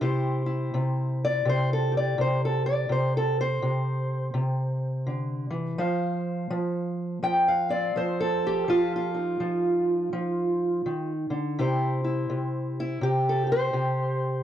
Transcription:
0.01 0.73 C3 medium
0.01 0.46 E4 medium
0.01 1.91 G4 medium
0.01 1.24 C5 medium
0.46 2.87 E4 soft
0.74 1.45 C3 medium
1.25 1.48 D5 loud
1.45 2.17 C3 medium
1.49 1.72 C5 medium
1.73 1.96 A4 medium
1.92 2.88 G4 soft
1.97 2.20 D5 medium
2.18 2.87 C3 medium
2.18 2.44 C5 medium
2.45 2.66 A4 medium
2.66 2.91 D5 medium
2.89 3.61 C3 medium
2.89 3.16 C5 medium
3.17 3.40 A4 medium
3.41 5.56 C5 medium
3.62 4.33 C3 medium
4.34 5.75 C3 medium
5.07 5.50 D3 medium
5.51 5.79 E3 medium
5.78 6.50 F3 medium
5.78 7.70 C5 medium
5.78 7.23 F5 medium
6.50 7.22 F3 medium
7.23 7.94 F3 medium
7.23 7.48 G5 loud
7.48 8.20 F5 medium
7.69 8.46 C4 soft
7.69 7.95 D5 medium
7.96 8.65 F3 medium
7.96 8.69 C5 medium
8.20 9.17 A4 medium
8.47 9.14 G4 medium
8.68 9.39 F3 medium
8.68 8.93 F4 medium
8.96 11.11 F4 medium
9.14 11.55 D#4 soft
9.40 10.12 F3 medium
10.13 10.85 F3 medium
10.86 11.30 D#3 medium
11.30 11.58 D3 medium
11.59 12.29 C3 medium
11.59 12.04 E4 medium
11.59 12.80 G4 medium
11.59 13.28 C5 medium
12.04 12.79 E4 soft
12.30 13.01 C3 medium
12.80 13.03 E4 medium
13.01 13.72 C3 medium
13.01 13.45 G4 medium
13.29 13.51 A4 medium
13.47 13.73 G4 soft
13.52 14.43 C5 medium
13.73 14.43 C3 medium
13.73 14.43 G4 medium

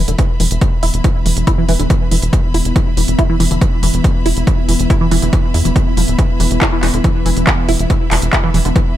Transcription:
0.00 8.97 E3 medium
0.00 8.97 B3 medium
0.00 8.97 E4 medium
0.00 8.97 B4 medium
0.00 8.97 E5 medium
0.00 8.97 B5 medium
0.08 0.16 E1 medium
0.08 0.12 D3 medium
0.08 closed hi-hat medium
0.18 0.23 E3 medium
0.18 kick loud
0.18 closed hi-hat medium
0.40 0.48 E1 medium
0.40 0.44 E3 medium
0.40 open hi-hat loud
0.51 0.59 E1 medium
0.51 closed hi-hat medium
0.61 kick loud
0.61 closed hi-hat medium
0.83 0.91 E1 medium
0.83 0.85 E4 loud
0.83 open hi-hat loud
0.94 1.02 E1 medium
0.94 closed hi-hat medium
1.04 1.09 E3 medium
1.04 kick loud
1.04 closed hi-hat medium
1.26 1.34 E1 medium
1.26 1.30 E3 medium
1.26 open hi-hat loud
1.37 1.45 E1 medium
1.37 closed hi-hat medium
1.47 1.51 E4 loud
1.47 kick loud
1.47 closed hi-hat medium
1.58 1.64 E3 loud
1.69 1.77 E1 loud
1.69 1.73 E3 loud
1.69 open hi-hat medium
1.80 1.87 E1 medium
1.80 1.84 D3 medium
1.80 closed hi-hat medium
1.90 1.94 E3 medium
1.90 kick loud
1.90 closed hi-hat medium
2.11 2.20 E1 medium
2.11 2.16 E3 medium
2.11 open hi-hat loud
2.22 2.30 E1 medium
2.22 closed hi-hat medium
2.33 kick loud
2.33 closed hi-hat medium
2.54 2.63 E1 medium
2.54 2.57 E4 loud
2.54 open hi-hat loud
2.65 2.73 E1 medium
2.65 closed hi-hat medium
2.76 2.80 E3 medium
2.76 kick loud
2.76 closed hi-hat medium
2.97 3.05 E1 medium
2.97 3.01 E3 medium
2.97 open hi-hat loud
3.08 3.16 E1 medium
3.08 closed hi-hat medium
3.19 3.23 E4 loud
3.19 kick loud
3.19 closed hi-hat medium
3.29 3.36 E3 loud
3.40 3.48 E1 medium
3.40 3.44 E3 loud
3.40 open hi-hat medium
3.51 3.59 E1 medium
3.51 3.55 D3 medium
3.51 closed hi-hat medium
3.61 3.66 E3 medium
3.61 kick loud
3.61 closed hi-hat medium
3.83 3.91 E1 medium
3.83 3.87 E3 medium
3.83 open hi-hat loud
3.94 4.02 E1 medium
3.94 closed hi-hat medium
4.04 kick loud
4.04 closed hi-hat medium
4.26 4.34 E1 medium
4.26 4.28 E4 loud
4.26 open hi-hat loud
4.37 4.45 E1 medium
4.37 closed hi-hat medium
4.47 4.51 E3 medium
4.47 kick loud
4.47 closed hi-hat medium
4.69 4.77 E1 loud
4.69 4.73 E3 medium
4.69 open hi-hat loud
4.80 4.87 E1 medium
4.80 closed hi-hat medium
4.90 4.94 E4 loud
4.90 kick loud
4.90 closed hi-hat medium
5.01 5.07 E3 loud
5.11 5.20 E1 medium
5.11 5.16 E3 loud
5.11 open hi-hat medium
5.22 5.30 E1 medium
5.22 5.26 D3 medium
5.22 closed hi-hat medium
5.33 5.37 E3 medium
5.33 kick loud
5.33 closed hi-hat medium
5.54 5.63 E2 medium
5.54 5.57 E4 medium
5.54 open hi-hat loud
5.65 5.73 E1 medium
5.65 5.69 E3 medium
5.65 closed hi-hat medium
5.76 5.78 E3 medium
5.76 kick loud
5.76 closed hi-hat medium
5.97 6.05 E1 medium
5.97 6.01 F3 medium
5.97 open hi-hat loud
6.08 6.16 D1 medium
6.08 closed hi-hat medium
6.19 6.23 E3 medium
6.19 kick loud
6.19 closed hi-hat medium
6.40 6.48 E1 loud
6.40 6.44 E3 medium
6.40 open hi-hat loud
6.51 6.59 E1 medium
6.51 closed hi-hat medium
6.61 6.66 E4 loud
6.61 kick loud
6.61 clap loud
6.61 closed hi-hat medium
6.72 6.79 E3 loud
6.83 6.91 E1 medium
6.83 6.87 E3 loud
6.83 clap medium
6.83 open hi-hat medium
6.94 7.02 E1 medium
6.94 6.98 D3 medium
6.94 closed hi-hat medium
7.04 7.09 E3 medium
7.04 kick loud
7.04 closed hi-hat medium
7.26 7.34 E1 medium
7.26 7.30 E3 medium
7.26 open hi-hat loud
7.37 7.44 E1 medium
7.37 closed hi-hat medium
7.47 kick loud
7.47 clap loud
7.47 closed hi-hat medium
7.69 7.77 E1 medium
7.69 7.71 E4 loud
7.69 open hi-hat loud
7.79 7.87 E1 medium
7.79 closed hi-hat medium
7.90 7.94 E3 medium
7.90 kick loud
7.90 closed hi-hat medium
8.11 8.20 E1 medium
8.11 8.16 E3 medium
8.11 clap medium
8.11 open hi-hat loud
8.22 8.30 E1 medium
8.22 closed hi-hat medium
8.33 8.37 E4 loud
8.33 kick loud
8.33 clap loud
8.33 closed hi-hat medium
8.44 8.50 E3 loud
8.54 8.62 E1 medium
8.54 8.59 E3 loud
8.54 open hi-hat medium
8.65 8.73 E1 medium
8.65 8.69 D3 medium
8.65 closed hi-hat medium
8.76 8.80 E3 medium
8.76 kick loud
8.76 closed hi-hat medium

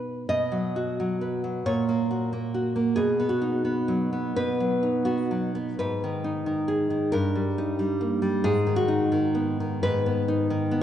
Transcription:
0.00 0.26 B2 soft
0.00 0.26 B3 soft
0.00 0.26 D#4 soft
0.00 0.26 B4 soft
0.29 1.62 B2 soft
0.29 1.62 D#5 medium
0.52 0.99 F#3 soft
0.76 1.67 F#4 soft
1.00 1.43 F#3 soft
1.21 1.66 B4 soft
1.44 1.66 F#3 soft
1.66 2.93 A#2 medium
1.66 2.93 C#5 medium
1.89 2.31 A#3 soft
2.11 2.53 F#4 soft
2.33 2.74 A#3 soft
2.54 2.95 F#4 soft
2.76 2.97 A#3 soft
2.96 4.32 B2 soft
2.96 3.28 G#4 medium
3.20 3.63 B3 soft
3.29 4.32 F#4 medium
3.42 4.48 D#4 soft
3.65 4.11 B3 soft
3.88 4.59 F#3 soft
4.13 5.04 B3 soft
4.36 5.75 B2 soft
4.36 5.02 B4 medium
4.60 5.30 F#3 soft
4.83 5.79 D#4 soft
5.05 5.54 B3 soft
5.05 5.75 F#4 medium
5.31 5.79 F#3 soft
5.55 5.79 B3 soft
5.79 7.09 G#2 medium
5.79 7.09 B4 medium
6.04 6.45 D#3 soft
6.24 7.13 D#4 soft
6.46 6.89 D#3 soft
6.68 7.13 G#4 soft
6.90 7.13 D#3 soft
7.12 8.41 G2 medium
7.12 8.41 A#4 medium
7.35 7.78 G3 soft
7.58 8.46 D#4 soft
7.79 8.21 G3 soft
8.01 8.45 A#3 soft
8.22 8.44 G3 soft
8.44 9.78 G#2 medium
8.44 8.76 G#4 medium
8.67 9.11 D#3 soft
8.76 9.78 F#4 medium
8.88 9.94 D#4 soft
9.12 9.59 D#3 soft
9.35 10.05 B3 soft
9.60 10.49 D#3 soft
9.83 10.83 G#2 medium
9.83 10.47 B4 medium
10.06 10.70 B3 soft
10.28 10.83 D#4 soft
10.50 10.83 D#3 soft
10.71 10.83 B3 soft

